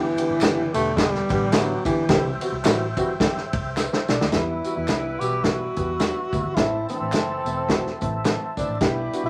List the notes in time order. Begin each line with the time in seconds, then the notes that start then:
Already playing: G1 E3 B4 D5 G5
0.18 D3 G3 B3 D4 G4, ride, tambourine
0.30 G1
0.41 F#1 D3 G3 B3 D4 G4, snare, clap, ride, tambourine
0.74 E1 D3 G3 A3 B3 D4 G4, ride, tambourine
0.97 D3 G3 B3 D4 G4, kick, snare, ride, tambourine
1.15 snare
1.29 A1 D3 G3 B3 D4 G4, kick, ride, tambourine
1.52 D3 F#3 G3 B3 D4 E4, snare, clap, ride, tambourine
1.85 G1 D3 E3 G3 B3 D4 G4, kick, ride, tambourine
2.09 C2 E3 G3 C4 E4 G4 C5 E5, kick, snare, ride, tambourine
2.41 E3 G3 C4 E4 F#4, ride, tambourine
2.52 C2
2.64 A1 E3 G3 C4 E4 F#4, snare, clap, ride, tambourine
2.97 G1 E3 G3 C4 E4 F#4, kick, ride, tambourine
3.20 E3 G3 C4 E4 G4, kick, snare, ride, tambourine
3.37 snare
3.53 C2, kick, ride
3.76 B4, snare, clap, tambourine
3.93 C5, snare
4.08 B1 D4 D5, snare, tambourine
4.21 D2 E5, snare
4.32 E2 E3 G3 B3 E4 B4 E5, kick, snare, closed hi-hat, tambourine
4.64 E3 G3 B3 F#4, closed hi-hat, tambourine
4.76 E2 E4
4.87 C2 E3 G3 B3 D4, snare, clap, closed hi-hat, tambourine
5.20 B1 E3 G3 B3 F#4 G4, closed hi-hat, tambourine
5.43 E3 G3 B3 E4 F#4, kick, snare, closed hi-hat, tambourine
5.76 E2 E3 G3 B3 G4, kick, closed hi-hat, tambourine
6.00 E3 G3 B3 D4, snare, clap, closed hi-hat, tambourine
6.33 D2 E3 G3 B3 E4, kick, closed hi-hat, tambourine
6.46 G1
6.55 A1 E3 A3 C4 E4 A4 C5 E5 A5, kick, snare, closed hi-hat, tambourine
6.89 E3 A3 C4 D4, closed hi-hat, tambourine
7.01 A1
7.12 F#1 E3 A3 C4 E4, snare, clap, closed hi-hat, tambourine
7.45 E1 E3 A3 C4 E4, closed hi-hat, tambourine
7.68 E3 A3 C4 F#4, kick, snare, closed hi-hat, tambourine
7.87 snare
8.01 A1 E3 A3 C4 E4, kick, closed hi-hat, tambourine
8.25 E3 A3 C4 E4, snare, clap, closed hi-hat, tambourine
8.57 G1 E3 A3 C4 D4 E4, kick, closed hi-hat, tambourine
8.69 A1
8.80 B1 G3 B3 D4 E4 G4 B4 D5, kick, snare, closed hi-hat, tambourine
9.13 G3 B3 D4 F#4, closed hi-hat, tambourine
9.23 B1 E4